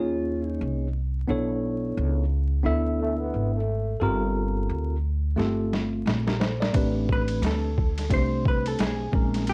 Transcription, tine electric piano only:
Already playing: A#3 C#4 D#4 G#4 C#5
1.27 B3 D4 E4 A4 C#5
2.63 B3 D4 E4 A4 E5
4.00 C4 F4 G4 A4 A#4
5.36 A3 C4 F4 G4 A4
6.27 G4 A#4
6.40 A4 C5
6.60 A#4 D5
6.73 A3 C4 D4 G4 B4
8.10 A3 C4 D4 G4 C5
9.12 G#3 C4 C#4 D#4 A#4

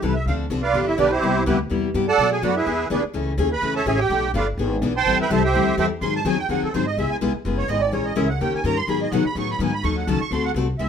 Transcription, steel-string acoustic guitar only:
0.02 E3 G3 C4 E4 A4
0.28 D3 F3 C4 D4 A4
0.50 D3 F3 C4 D4 A4
0.74 D3 F3 B3 D4 G4
0.98 D3 F3 B3 D4 G4
1.22 C3 G3 B3 E4 G4
1.46 C3 G3 B3 E4 G4
1.70 C3 G3 B3 E4 G4
1.94 C3 G3 B3 E4 G4
2.19 B2 F#3 A3 D4 F#4
2.43 B2 F#3 A3 D4 F#4
2.66 E3 B3 D4 G#4
2.90 E3 B3 D4 G#4
3.14 C#3 E3 A3 C#4 G#4
3.38 C#3 E3 A3 C#4 G#4
3.62 C#3 E3 A3 C#4 G#4
3.86 C#3 E3 A3 C#4 G#4
4.10 B2 F3 A3 D4 A4
4.34 B2 F3 A3 D4 A4
4.59 E3 B3 D4 G#4
4.82 E3 B3 D4 G#4
5.06 E3 G3 C4 E4 A4
5.31 E3 G3 C4 E4 A4
5.54 E3 G3 C4 E4 A4
5.78 E3 G3 C4 E4 A4
6.02 D#3 F#3 C4 D#4 G#4
6.25 D#3 F#3 C4 D#4 G#4
6.49 D#3 F#3 C4 D#4 G#4
6.74 D#3 F#3 C4 D#4 G#4
6.98 C#3 G#3 B3 E4 G#4
7.21 C#3 G#3 B3 E4 G#4
7.45 C#3 G#3 B3 E4 G#4
7.68 C#3 G#3 B3 E4 G#4
7.92 E3 G#3 C#4 G#4 A#4
8.16 E3 G#3 C#4 G#4 A#4
8.40 D#3 A#3 C#4 G4 A#4
8.65 D#3 A#3 C#4 G4 A#4
8.87 D#3 F#3 B3 D#4 G#4
9.12 D#3 F#3 B3 D#4 G#4
9.36 D#3 F#3 B3 D#4 G#4
9.60 D#3 F#3 B3 D#4 G#4
9.83 D#3 F#3 C#4 D#4 A4
10.07 D#3 F#3 C#4 D#4 A4
10.32 D3 A3 C4 F#4 A4
10.56 D3 A3 C4 F#4 A4
10.79 C#3 G#3 B3 E4 G#4

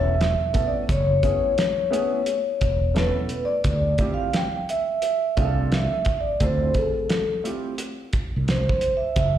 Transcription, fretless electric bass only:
Already playing: E1
0.89 F#1
2.62 E1
3.65 D2
5.37 C2
6.41 D2
8.36 C2
9.17 F#1

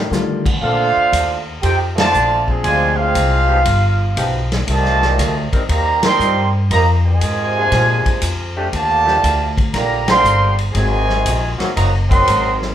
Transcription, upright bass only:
Already playing: A2
0.11 D3
0.62 A#2
0.96 muted upright bass stroke
1.12 D#2
1.63 F2
2.13 A#1
2.64 D2
3.15 C2
3.65 G1
4.17 B1
4.68 C2
5.19 D2
5.52 muted upright bass stroke
5.69 D#2
6.19 G2
6.71 F2
7.21 G#2
7.71 A#2
8.06 muted upright bass stroke
8.22 F2
8.73 D#2
9.24 D2
9.74 A#1
10.24 G1
10.75 G#1
11.26 A#1
11.60 muted upright bass stroke
11.77 F#1
12.28 G#1

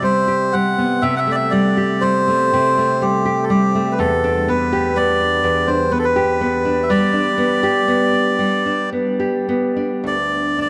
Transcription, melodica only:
0.04 C5
0.53 F#5
1.02 E5
1.16 E5 F#5
1.32 D5 E5
1.51 D5
2.01 C5
3.02 G4
3.43 A4
3.50 G4
3.92 B4
3.99 A4
4.49 B4
4.97 D5
5.67 C5
5.91 B4
5.99 A4
6.04 B4
6.83 E5
6.90 D5
10.07 D5
10.61 D5

